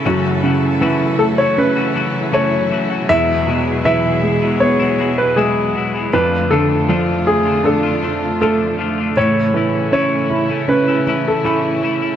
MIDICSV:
0, 0, Header, 1, 5, 480
1, 0, Start_track
1, 0, Key_signature, 3, "major"
1, 0, Tempo, 759494
1, 32, Time_signature, 4, 2, 24, 8
1, 7685, End_track
2, 0, Start_track
2, 0, Title_t, "Grand piano"
2, 0, Program_c, 0, 0
2, 751, Note_on_c, 0, 69, 65
2, 783, Note_off_c, 0, 69, 0
2, 873, Note_on_c, 0, 73, 71
2, 996, Note_off_c, 0, 73, 0
2, 1001, Note_on_c, 0, 71, 62
2, 1451, Note_off_c, 0, 71, 0
2, 1480, Note_on_c, 0, 73, 62
2, 1954, Note_on_c, 0, 76, 93
2, 1970, Note_off_c, 0, 73, 0
2, 2426, Note_off_c, 0, 76, 0
2, 2435, Note_on_c, 0, 76, 79
2, 2909, Note_on_c, 0, 73, 66
2, 2928, Note_off_c, 0, 76, 0
2, 3245, Note_off_c, 0, 73, 0
2, 3274, Note_on_c, 0, 71, 66
2, 3384, Note_off_c, 0, 71, 0
2, 3389, Note_on_c, 0, 68, 55
2, 3876, Note_on_c, 0, 71, 72
2, 3885, Note_off_c, 0, 68, 0
2, 4111, Note_on_c, 0, 69, 72
2, 4121, Note_off_c, 0, 71, 0
2, 4594, Note_on_c, 0, 68, 62
2, 4606, Note_off_c, 0, 69, 0
2, 4836, Note_on_c, 0, 69, 60
2, 4840, Note_off_c, 0, 68, 0
2, 5309, Note_off_c, 0, 69, 0
2, 5319, Note_on_c, 0, 69, 56
2, 5796, Note_on_c, 0, 73, 68
2, 5809, Note_off_c, 0, 69, 0
2, 6266, Note_off_c, 0, 73, 0
2, 6276, Note_on_c, 0, 73, 74
2, 6754, Note_on_c, 0, 71, 60
2, 6768, Note_off_c, 0, 73, 0
2, 7124, Note_off_c, 0, 71, 0
2, 7128, Note_on_c, 0, 69, 51
2, 7455, Note_off_c, 0, 69, 0
2, 7685, End_track
3, 0, Start_track
3, 0, Title_t, "Clean electric guitar"
3, 0, Program_c, 1, 27
3, 33, Note_on_c, 1, 42, 68
3, 34, Note_on_c, 1, 49, 75
3, 36, Note_on_c, 1, 52, 74
3, 39, Note_on_c, 1, 57, 66
3, 40, Note_on_c, 1, 61, 73
3, 42, Note_on_c, 1, 66, 80
3, 260, Note_off_c, 1, 52, 0
3, 268, Note_off_c, 1, 57, 0
3, 268, Note_on_c, 1, 52, 52
3, 272, Note_off_c, 1, 42, 0
3, 273, Note_off_c, 1, 49, 0
3, 273, Note_off_c, 1, 61, 0
3, 275, Note_on_c, 1, 57, 53
3, 277, Note_off_c, 1, 66, 0
3, 280, Note_on_c, 1, 61, 56
3, 284, Note_on_c, 1, 66, 61
3, 507, Note_off_c, 1, 52, 0
3, 508, Note_on_c, 1, 42, 68
3, 510, Note_off_c, 1, 57, 0
3, 511, Note_off_c, 1, 61, 0
3, 512, Note_on_c, 1, 49, 66
3, 514, Note_off_c, 1, 66, 0
3, 515, Note_on_c, 1, 52, 78
3, 518, Note_on_c, 1, 57, 76
3, 519, Note_on_c, 1, 61, 79
3, 521, Note_on_c, 1, 66, 89
3, 861, Note_off_c, 1, 66, 0
3, 867, Note_off_c, 1, 61, 0
3, 869, Note_on_c, 1, 66, 37
3, 870, Note_off_c, 1, 42, 0
3, 872, Note_off_c, 1, 49, 0
3, 873, Note_off_c, 1, 52, 0
3, 874, Note_on_c, 1, 61, 40
3, 875, Note_off_c, 1, 57, 0
3, 882, Note_on_c, 1, 57, 38
3, 887, Note_on_c, 1, 52, 30
3, 1103, Note_off_c, 1, 66, 0
3, 1111, Note_off_c, 1, 61, 0
3, 1111, Note_on_c, 1, 66, 38
3, 1117, Note_off_c, 1, 57, 0
3, 1119, Note_off_c, 1, 52, 0
3, 1119, Note_on_c, 1, 61, 42
3, 1124, Note_on_c, 1, 57, 33
3, 1127, Note_on_c, 1, 52, 31
3, 1220, Note_off_c, 1, 52, 0
3, 1228, Note_off_c, 1, 57, 0
3, 1228, Note_on_c, 1, 52, 49
3, 1231, Note_off_c, 1, 61, 0
3, 1231, Note_off_c, 1, 66, 0
3, 1236, Note_on_c, 1, 57, 54
3, 1238, Note_on_c, 1, 61, 51
3, 1244, Note_on_c, 1, 66, 48
3, 1464, Note_off_c, 1, 52, 0
3, 1465, Note_on_c, 1, 42, 63
3, 1466, Note_off_c, 1, 57, 0
3, 1468, Note_off_c, 1, 61, 0
3, 1468, Note_on_c, 1, 49, 62
3, 1470, Note_off_c, 1, 66, 0
3, 1472, Note_on_c, 1, 52, 66
3, 1474, Note_on_c, 1, 57, 73
3, 1475, Note_on_c, 1, 61, 67
3, 1478, Note_on_c, 1, 66, 68
3, 1703, Note_off_c, 1, 52, 0
3, 1707, Note_off_c, 1, 57, 0
3, 1708, Note_off_c, 1, 42, 0
3, 1710, Note_off_c, 1, 49, 0
3, 1710, Note_on_c, 1, 52, 50
3, 1713, Note_off_c, 1, 61, 0
3, 1715, Note_off_c, 1, 66, 0
3, 1715, Note_on_c, 1, 57, 51
3, 1720, Note_on_c, 1, 61, 48
3, 1728, Note_on_c, 1, 66, 59
3, 1825, Note_off_c, 1, 66, 0
3, 1831, Note_off_c, 1, 52, 0
3, 1831, Note_off_c, 1, 61, 0
3, 1833, Note_off_c, 1, 57, 0
3, 1833, Note_on_c, 1, 66, 44
3, 1838, Note_on_c, 1, 61, 39
3, 1843, Note_on_c, 1, 57, 32
3, 1850, Note_on_c, 1, 52, 36
3, 1952, Note_off_c, 1, 66, 0
3, 1955, Note_off_c, 1, 61, 0
3, 1957, Note_off_c, 1, 52, 0
3, 1957, Note_off_c, 1, 57, 0
3, 1957, Note_on_c, 1, 40, 63
3, 1959, Note_on_c, 1, 47, 65
3, 1960, Note_on_c, 1, 54, 57
3, 1962, Note_on_c, 1, 56, 65
3, 1967, Note_on_c, 1, 59, 66
3, 1967, Note_on_c, 1, 64, 68
3, 2184, Note_off_c, 1, 54, 0
3, 2192, Note_on_c, 1, 54, 49
3, 2193, Note_off_c, 1, 56, 0
3, 2194, Note_off_c, 1, 40, 0
3, 2195, Note_off_c, 1, 47, 0
3, 2197, Note_off_c, 1, 59, 0
3, 2200, Note_off_c, 1, 64, 0
3, 2200, Note_on_c, 1, 56, 44
3, 2204, Note_on_c, 1, 59, 43
3, 2210, Note_on_c, 1, 64, 48
3, 2430, Note_off_c, 1, 54, 0
3, 2432, Note_off_c, 1, 56, 0
3, 2435, Note_off_c, 1, 59, 0
3, 2435, Note_on_c, 1, 40, 64
3, 2436, Note_on_c, 1, 47, 62
3, 2438, Note_on_c, 1, 54, 64
3, 2439, Note_off_c, 1, 64, 0
3, 2440, Note_on_c, 1, 56, 62
3, 2443, Note_on_c, 1, 59, 69
3, 2446, Note_on_c, 1, 64, 78
3, 2785, Note_off_c, 1, 64, 0
3, 2789, Note_off_c, 1, 59, 0
3, 2792, Note_on_c, 1, 64, 37
3, 2793, Note_off_c, 1, 40, 0
3, 2794, Note_off_c, 1, 47, 0
3, 2795, Note_off_c, 1, 54, 0
3, 2796, Note_off_c, 1, 56, 0
3, 2797, Note_on_c, 1, 59, 39
3, 2803, Note_on_c, 1, 56, 38
3, 2810, Note_on_c, 1, 54, 31
3, 3022, Note_off_c, 1, 64, 0
3, 3030, Note_off_c, 1, 59, 0
3, 3030, Note_on_c, 1, 64, 43
3, 3036, Note_off_c, 1, 56, 0
3, 3037, Note_on_c, 1, 59, 38
3, 3041, Note_off_c, 1, 54, 0
3, 3043, Note_on_c, 1, 56, 35
3, 3048, Note_on_c, 1, 54, 33
3, 3143, Note_off_c, 1, 54, 0
3, 3151, Note_off_c, 1, 64, 0
3, 3151, Note_on_c, 1, 54, 47
3, 3152, Note_off_c, 1, 56, 0
3, 3154, Note_off_c, 1, 59, 0
3, 3159, Note_on_c, 1, 56, 49
3, 3164, Note_on_c, 1, 59, 47
3, 3168, Note_on_c, 1, 64, 53
3, 3388, Note_off_c, 1, 54, 0
3, 3389, Note_off_c, 1, 56, 0
3, 3389, Note_on_c, 1, 40, 64
3, 3391, Note_off_c, 1, 59, 0
3, 3393, Note_on_c, 1, 47, 67
3, 3394, Note_off_c, 1, 64, 0
3, 3395, Note_on_c, 1, 54, 69
3, 3397, Note_on_c, 1, 56, 68
3, 3398, Note_on_c, 1, 59, 58
3, 3401, Note_on_c, 1, 64, 74
3, 3623, Note_off_c, 1, 54, 0
3, 3630, Note_off_c, 1, 56, 0
3, 3631, Note_off_c, 1, 40, 0
3, 3631, Note_on_c, 1, 54, 47
3, 3632, Note_off_c, 1, 47, 0
3, 3635, Note_off_c, 1, 59, 0
3, 3636, Note_off_c, 1, 64, 0
3, 3637, Note_on_c, 1, 56, 46
3, 3644, Note_on_c, 1, 59, 46
3, 3650, Note_on_c, 1, 64, 51
3, 3746, Note_off_c, 1, 64, 0
3, 3751, Note_off_c, 1, 54, 0
3, 3753, Note_off_c, 1, 59, 0
3, 3753, Note_on_c, 1, 64, 40
3, 3754, Note_off_c, 1, 56, 0
3, 3760, Note_on_c, 1, 59, 43
3, 3765, Note_on_c, 1, 56, 40
3, 3769, Note_on_c, 1, 54, 32
3, 3870, Note_off_c, 1, 54, 0
3, 3872, Note_off_c, 1, 64, 0
3, 3872, Note_on_c, 1, 53, 54
3, 3874, Note_off_c, 1, 56, 0
3, 3876, Note_off_c, 1, 59, 0
3, 3877, Note_on_c, 1, 57, 59
3, 3883, Note_on_c, 1, 62, 62
3, 3883, Note_on_c, 1, 65, 62
3, 4103, Note_off_c, 1, 53, 0
3, 4107, Note_off_c, 1, 57, 0
3, 4110, Note_on_c, 1, 53, 47
3, 4114, Note_off_c, 1, 62, 0
3, 4115, Note_on_c, 1, 57, 48
3, 4117, Note_off_c, 1, 65, 0
3, 4122, Note_on_c, 1, 62, 51
3, 4126, Note_on_c, 1, 65, 47
3, 4344, Note_off_c, 1, 53, 0
3, 4351, Note_off_c, 1, 57, 0
3, 4352, Note_off_c, 1, 62, 0
3, 4352, Note_on_c, 1, 53, 65
3, 4358, Note_on_c, 1, 57, 64
3, 4359, Note_off_c, 1, 65, 0
3, 4360, Note_on_c, 1, 62, 71
3, 4367, Note_on_c, 1, 65, 67
3, 4702, Note_off_c, 1, 65, 0
3, 4710, Note_on_c, 1, 65, 36
3, 4712, Note_off_c, 1, 53, 0
3, 4712, Note_off_c, 1, 62, 0
3, 4715, Note_off_c, 1, 57, 0
3, 4719, Note_on_c, 1, 62, 36
3, 4725, Note_on_c, 1, 57, 30
3, 4942, Note_off_c, 1, 65, 0
3, 4950, Note_on_c, 1, 65, 42
3, 4953, Note_off_c, 1, 62, 0
3, 4958, Note_off_c, 1, 57, 0
3, 4961, Note_on_c, 1, 62, 35
3, 4967, Note_on_c, 1, 57, 28
3, 5071, Note_off_c, 1, 57, 0
3, 5071, Note_off_c, 1, 65, 0
3, 5071, Note_on_c, 1, 53, 45
3, 5074, Note_off_c, 1, 62, 0
3, 5079, Note_on_c, 1, 57, 47
3, 5082, Note_on_c, 1, 62, 41
3, 5088, Note_on_c, 1, 65, 45
3, 5311, Note_off_c, 1, 53, 0
3, 5313, Note_off_c, 1, 57, 0
3, 5317, Note_off_c, 1, 62, 0
3, 5318, Note_on_c, 1, 53, 59
3, 5320, Note_off_c, 1, 65, 0
3, 5320, Note_on_c, 1, 57, 67
3, 5323, Note_on_c, 1, 62, 61
3, 5328, Note_on_c, 1, 65, 70
3, 5544, Note_off_c, 1, 53, 0
3, 5548, Note_off_c, 1, 57, 0
3, 5551, Note_on_c, 1, 53, 49
3, 5555, Note_off_c, 1, 62, 0
3, 5556, Note_on_c, 1, 57, 50
3, 5560, Note_off_c, 1, 65, 0
3, 5562, Note_on_c, 1, 62, 46
3, 5568, Note_on_c, 1, 65, 52
3, 5667, Note_off_c, 1, 65, 0
3, 5671, Note_off_c, 1, 53, 0
3, 5674, Note_off_c, 1, 57, 0
3, 5675, Note_on_c, 1, 65, 38
3, 5677, Note_off_c, 1, 62, 0
3, 5685, Note_on_c, 1, 62, 37
3, 5693, Note_on_c, 1, 57, 31
3, 5793, Note_off_c, 1, 65, 0
3, 5795, Note_off_c, 1, 57, 0
3, 5796, Note_on_c, 1, 45, 54
3, 5798, Note_off_c, 1, 62, 0
3, 5799, Note_on_c, 1, 52, 65
3, 5802, Note_on_c, 1, 57, 57
3, 5806, Note_on_c, 1, 61, 63
3, 5808, Note_on_c, 1, 64, 66
3, 6024, Note_off_c, 1, 52, 0
3, 6031, Note_off_c, 1, 57, 0
3, 6031, Note_on_c, 1, 52, 47
3, 6034, Note_off_c, 1, 45, 0
3, 6037, Note_off_c, 1, 61, 0
3, 6038, Note_on_c, 1, 57, 43
3, 6040, Note_off_c, 1, 64, 0
3, 6045, Note_on_c, 1, 61, 53
3, 6051, Note_on_c, 1, 64, 50
3, 6271, Note_off_c, 1, 52, 0
3, 6271, Note_off_c, 1, 57, 0
3, 6274, Note_off_c, 1, 61, 0
3, 6274, Note_on_c, 1, 45, 64
3, 6277, Note_off_c, 1, 64, 0
3, 6278, Note_on_c, 1, 52, 59
3, 6279, Note_on_c, 1, 57, 62
3, 6282, Note_on_c, 1, 61, 69
3, 6285, Note_on_c, 1, 64, 71
3, 6625, Note_off_c, 1, 64, 0
3, 6632, Note_on_c, 1, 64, 42
3, 6633, Note_off_c, 1, 45, 0
3, 6634, Note_off_c, 1, 61, 0
3, 6635, Note_off_c, 1, 52, 0
3, 6635, Note_off_c, 1, 57, 0
3, 6641, Note_on_c, 1, 61, 35
3, 6647, Note_on_c, 1, 57, 35
3, 6867, Note_off_c, 1, 64, 0
3, 6875, Note_on_c, 1, 64, 40
3, 6876, Note_off_c, 1, 61, 0
3, 6879, Note_off_c, 1, 57, 0
3, 6883, Note_on_c, 1, 61, 38
3, 6890, Note_on_c, 1, 57, 35
3, 6993, Note_off_c, 1, 64, 0
3, 6994, Note_on_c, 1, 52, 48
3, 6995, Note_off_c, 1, 57, 0
3, 6997, Note_off_c, 1, 61, 0
3, 7003, Note_on_c, 1, 57, 44
3, 7007, Note_on_c, 1, 61, 47
3, 7011, Note_on_c, 1, 64, 53
3, 7229, Note_off_c, 1, 52, 0
3, 7232, Note_off_c, 1, 57, 0
3, 7233, Note_on_c, 1, 45, 66
3, 7236, Note_off_c, 1, 61, 0
3, 7236, Note_on_c, 1, 52, 63
3, 7237, Note_off_c, 1, 64, 0
3, 7240, Note_on_c, 1, 57, 64
3, 7243, Note_on_c, 1, 61, 63
3, 7244, Note_on_c, 1, 64, 68
3, 7460, Note_off_c, 1, 52, 0
3, 7468, Note_off_c, 1, 57, 0
3, 7468, Note_on_c, 1, 52, 48
3, 7472, Note_off_c, 1, 45, 0
3, 7474, Note_off_c, 1, 61, 0
3, 7475, Note_on_c, 1, 57, 43
3, 7478, Note_off_c, 1, 64, 0
3, 7482, Note_on_c, 1, 61, 54
3, 7486, Note_on_c, 1, 64, 55
3, 7588, Note_off_c, 1, 64, 0
3, 7590, Note_off_c, 1, 52, 0
3, 7593, Note_off_c, 1, 57, 0
3, 7596, Note_on_c, 1, 64, 41
3, 7597, Note_off_c, 1, 61, 0
3, 7603, Note_on_c, 1, 61, 40
3, 7612, Note_on_c, 1, 57, 36
3, 7685, Note_off_c, 1, 57, 0
3, 7685, Note_off_c, 1, 61, 0
3, 7685, Note_off_c, 1, 64, 0
3, 7685, End_track
4, 0, Start_track
4, 0, Title_t, "Felt piano"
4, 0, Program_c, 2, 0
4, 0, Control_c, 2, 64, 127
4, 38, Control_c, 2, 64, 0
4, 42, Note_on_c, 2, 42, 50
4, 133, Control_c, 2, 64, 127
4, 275, Note_on_c, 2, 49, 41
4, 513, Note_on_c, 2, 52, 43
4, 753, Note_on_c, 2, 57, 41
4, 996, Note_on_c, 2, 61, 46
4, 1208, Note_off_c, 2, 49, 0
4, 1447, Note_off_c, 2, 52, 0
4, 1465, Note_off_c, 2, 57, 0
4, 1474, Note_on_c, 2, 57, 43
4, 1929, Note_off_c, 2, 61, 0
4, 1932, Note_off_c, 2, 42, 0
4, 1939, Note_off_c, 2, 57, 0
4, 1955, Note_on_c, 2, 40, 52
4, 1959, Control_c, 2, 64, 0
4, 2082, Control_c, 2, 64, 127
4, 2193, Note_on_c, 2, 47, 41
4, 2431, Note_on_c, 2, 52, 45
4, 2672, Note_on_c, 2, 56, 41
4, 2910, Note_on_c, 2, 59, 51
4, 3127, Note_off_c, 2, 47, 0
4, 3366, Note_off_c, 2, 52, 0
4, 3383, Note_off_c, 2, 56, 0
4, 3392, Note_on_c, 2, 56, 45
4, 3845, Note_off_c, 2, 59, 0
4, 3848, Note_off_c, 2, 40, 0
4, 3857, Note_off_c, 2, 56, 0
4, 3876, Note_on_c, 2, 41, 56
4, 3881, Control_c, 2, 64, 0
4, 3994, Control_c, 2, 64, 127
4, 4113, Note_on_c, 2, 50, 41
4, 4355, Note_on_c, 2, 53, 45
4, 4597, Note_on_c, 2, 57, 37
4, 4828, Note_on_c, 2, 62, 47
4, 5047, Note_off_c, 2, 50, 0
4, 5288, Note_off_c, 2, 53, 0
4, 5305, Note_off_c, 2, 57, 0
4, 5315, Note_on_c, 2, 57, 38
4, 5765, Note_off_c, 2, 62, 0
4, 5768, Note_off_c, 2, 41, 0
4, 5779, Note_off_c, 2, 57, 0
4, 5798, Note_on_c, 2, 45, 55
4, 5800, Control_c, 2, 64, 0
4, 5919, Control_c, 2, 64, 127
4, 6030, Note_on_c, 2, 52, 40
4, 6270, Note_on_c, 2, 61, 43
4, 6508, Note_on_c, 2, 64, 41
4, 6741, Note_off_c, 2, 61, 0
4, 6750, Note_on_c, 2, 61, 47
4, 6966, Note_off_c, 2, 52, 0
4, 7223, Note_off_c, 2, 64, 0
4, 7232, Note_on_c, 2, 64, 44
4, 7685, Note_off_c, 2, 45, 0
4, 7685, Note_off_c, 2, 61, 0
4, 7685, Note_off_c, 2, 64, 0
4, 7685, End_track
5, 0, Start_track
5, 0, Title_t, "String section"
5, 0, Program_c, 3, 48
5, 0, Note_on_c, 3, 49, 61
5, 0, Note_on_c, 3, 64, 49
5, 0, Note_on_c, 3, 69, 62
5, 34, Note_on_c, 3, 54, 49
5, 1925, Note_off_c, 3, 49, 0
5, 1925, Note_off_c, 3, 69, 0
5, 1956, Note_on_c, 3, 68, 63
5, 1957, Note_on_c, 3, 47, 60
5, 3847, Note_off_c, 3, 54, 0
5, 3847, Note_off_c, 3, 64, 0
5, 3855, Note_off_c, 3, 47, 0
5, 3855, Note_off_c, 3, 68, 0
5, 3863, Note_on_c, 3, 57, 53
5, 3864, Note_on_c, 3, 65, 47
5, 3866, Note_on_c, 3, 41, 54
5, 3867, Note_on_c, 3, 50, 55
5, 5769, Note_off_c, 3, 65, 0
5, 5770, Note_off_c, 3, 41, 0
5, 5770, Note_off_c, 3, 50, 0
5, 5790, Note_on_c, 3, 64, 51
5, 5795, Note_on_c, 3, 49, 53
5, 7682, Note_off_c, 3, 57, 0
5, 7685, Note_off_c, 3, 49, 0
5, 7685, Note_off_c, 3, 64, 0
5, 7685, End_track
0, 0, End_of_file